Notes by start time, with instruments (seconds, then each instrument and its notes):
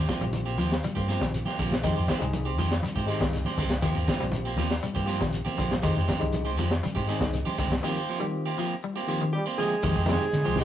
0.08 clean electric guitar F3 A#3 C4 G4, kick, snare, closed hi-hat, high conga, shekere
0.20 fingered electric bass A#1, clean electric guitar G3, tine electric piano C4 F4 G4, closed hi-hat, high conga, shekere
0.33 closed hi-hat, high conga, shekere
0.46 clean electric guitar A#3 C4 G4, shekere
0.58 fingered electric bass D#2, clean electric guitar F3 A#3 C4 G4, open hi-hat, high conga, shekere
0.72 snare, shekere
0.84 clean electric guitar G3, closed hi-hat, high conga, shekere
0.95 fingered electric bass G2, clean electric guitar A#3 C4 G4, tine electric piano F4 G4, kick, shekere
1.08 clean electric guitar F3 A#3 C4 G4, tine electric piano C4 F4 G4, snare, closed hi-hat, shekere
1.21 fingered electric bass A#1, clean electric guitar D#3, kick, snare, closed hi-hat, shekere
1.34 closed hi-hat, shekere
1.45 clean electric guitar A#3 C4 G4, snare, high conga, shekere
1.58 fingered electric bass A#1, clean electric guitar D3 F3 A#3 C4 G4, kick, closed hi-hat, shekere
1.71 snare, high conga, shekere
1.82 fingered electric bass F2, clean electric guitar D#3 G#3 C4 G4, tine electric piano G#3 D#4 G4, kick, closed hi-hat, shekere
1.96 fingered electric bass F2, clean electric guitar G#3 C4 G4, shekere
2.08 clean electric guitar D#3 G#3 C4 G4, kick, snare, closed hi-hat, high conga, shekere
2.18 fingered electric bass C2, clean electric guitar G3, tine electric piano G#3 D#4 G#4, closed hi-hat, high conga, shekere
2.33 closed hi-hat, high conga, shekere
2.45 clean electric guitar C4 G4, muted clean electric guitar stroke, shekere
2.58 fingered electric bass F2, clean electric guitar D#3 F3 G#3 C4 G4, open hi-hat, high conga, shekere
2.71 snare, closed hi-hat, shekere
2.83 clean electric guitar G3, closed hi-hat, high conga, shekere
2.94 fingered electric bass G#2, clean electric guitar G#3 C4 G4, tine electric piano D#4 F4, kick
2.99 shekere
3.06 clean electric guitar D#3 G#3 C4 G4, tine electric piano G#3 D#4 G4, closed hi-hat
3.11 shekere
3.21 fingered electric bass C2, clean electric guitar D#3, kick, snare, shekere
3.33 snare, closed hi-hat, shekere
3.45 clean electric guitar G#3 C4 G4, snare, high conga, shekere
3.57 fingered electric bass C2, clean electric guitar D3 D#3 G#3 C4 G4, kick, closed hi-hat, shekere
3.70 snare, closed hi-hat, high conga
3.82 fingered electric bass D#2, clean electric guitar D#3 F3 A#3 C4 G4, tine electric piano C4 F4 G4, kick, closed hi-hat, shekere
3.95 fingered electric bass D#2, clean electric guitar A#3 C4 G4, shekere
4.07 clean electric guitar F3 A#3 C4 G4, kick, snare, closed hi-hat, high conga, shekere
4.18 fingered electric bass A#1, clean electric guitar G3, tine electric piano C4 F4 G4, snare, closed hi-hat, high conga
4.23 shekere
4.32 closed hi-hat, high conga, shekere
4.45 clean electric guitar A#3 C4 G4, shekere
4.57 fingered electric bass D#2, clean electric guitar F3 A#3 C4 G4, snare, open hi-hat, high conga, shekere
4.71 snare, shekere
4.83 clean electric guitar G3, closed hi-hat, shekere
4.94 fingered electric bass G2, clean electric guitar A#3 C4 G4, tine electric piano F4 G4, kick, shekere
5.05 clean electric guitar F3 A#3 C4 G4, tine electric piano C4 F4 G4, shekere
5.09 snare, closed hi-hat
5.21 fingered electric bass A#1, clean electric guitar D#3, kick, snare, closed hi-hat, shekere
5.33 closed hi-hat, shekere
5.45 clean electric guitar A#3 C4 G4, high conga, shekere
5.57 fingered electric bass A#1, clean electric guitar D3 F3 A#3 C4 G4, kick, closed hi-hat, shekere
5.71 snare, high conga, shekere
5.82 fingered electric bass F2, clean electric guitar D#3 G#3 C4 G4, tine electric piano G#3 D#4 G4, kick, closed hi-hat, shekere
5.95 fingered electric bass F2, clean electric guitar G#3 C4 G4, snare, shekere
6.07 clean electric guitar D#3 G#3 C4 G4, kick, snare, closed hi-hat, high conga, shekere
6.19 fingered electric bass C2, clean electric guitar G3, tine electric piano G#3 D#4 G4, closed hi-hat, high conga, shekere
6.32 closed hi-hat, high conga, shekere
6.45 clean electric guitar G#3 C4 G4, shekere
6.57 fingered electric bass F2, clean electric guitar D#3 F3 G#3 C4 G4, snare, open hi-hat, high conga, shekere
6.71 snare, closed hi-hat, shekere
6.83 clean electric guitar G3, closed hi-hat, high conga, shekere
6.94 fingered electric bass G#2, clean electric guitar G#3 C4 G4, tine electric piano D#4 G4, kick, shekere
7.07 clean electric guitar D#3 G#3 C4 G4, tine electric piano G#3 D#4 G#4, snare, closed hi-hat, shekere
7.21 fingered electric bass C2, clean electric guitar D#3, kick, snare
7.33 closed hi-hat, shekere
7.45 clean electric guitar G#3 C4 G4, high conga, shekere
7.58 fingered electric bass C2, clean electric guitar D3 D#3 G#3 C4 G4, kick, snare, closed hi-hat, shekere
7.71 snare, closed hi-hat, high conga, shekere
7.83 tine electric piano D#3 C4 F4 G4, clean electric guitar D#3 F3 A#3 C4 G4
7.97 clean electric guitar A#3 C4 G4
8.09 clean electric guitar F3 A#3 C4 G4
8.19 tine electric piano D#3 C4 F4 G4, clean electric guitar G3
8.46 clean electric guitar A#3 C4 G4
8.58 clean electric guitar F3 A#3 C4 G4
8.84 clean electric guitar G3
8.94 clean electric guitar A#3 C4 G4, tine electric piano F4 G4
9.07 tine electric piano D#3 C4 F4 G4, clean electric guitar F3 A#3 C4 G4
9.21 clean electric guitar D#3
9.33 trombone G3, alto saxophone G4
9.46 clean electric guitar A#3 C4 G4
9.58 clean electric guitar D3 F3 A#3 C4 G4, trombone G#3, alto saxophone G#4
9.83 fingered electric bass F2, clean electric guitar D#3 G#3 C4 G4, tine electric piano G#3 D#4 G4, kick, closed hi-hat, shekere
9.94 fingered electric bass F2, clean electric guitar G#3 C4 G4, kick, high conga
10.06 clean electric guitar C3 D#3 G#3 C4 G4, tine electric piano G#3 D#4 G4, trombone G#3, snare, closed hi-hat, high conga, shekere
10.11 alto saxophone G#4
10.21 closed hi-hat
10.33 fingered electric bass D3, snare, closed hi-hat, shekere
10.45 fingered electric bass C2, clean electric guitar F3 G#3 C4 G4
10.56 clean electric guitar D#3 G#3 C4 G4, tine electric piano G#3 D#4 G4, alto saxophone G4, open hi-hat, high conga, low conga, shekere